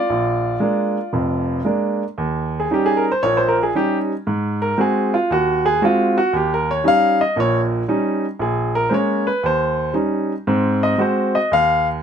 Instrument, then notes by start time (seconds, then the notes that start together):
grand piano
Already playing: F4 D5
0.10 A#1
0.60 G#3 A#3 D4
1.13 F1 F2
1.65 G#3 A#3 D4
2.18 D#2
2.60 G#4
2.71 G3 C#4 D#4 G4
2.86 G#4
2.97 A#4
3.12 C5
3.23 A#1 A#2 C#5
3.37 C5
3.48 A#4
3.63 G#4
3.75 G3 C#4 D#4 G4
4.27 G#2
4.62 A#4
4.78 G#3 C4 F#4 G#4
5.14 F4
5.30 D#2 F#4
5.66 G#4
5.82 G#3 C4 F4 F#4
6.18 F#4
6.33 D#2 G4
6.54 A#4
6.71 C#5
6.84 G3 C#4 D#4 F5
7.21 D#5
7.36 A#1 A#2 C#5
7.88 G3 C#4 D#4
8.39 A#1 G#4
8.75 A#4
8.89 G#3 A#3 C#4 C5
8.94 C#5
9.27 B4
9.43 D#2 C5
9.93 G3 C#4 D#4
10.47 G#2 C4
10.83 D#5
10.98 G#3 C4 F#4 C5
11.35 D#5
11.51 D#2 F5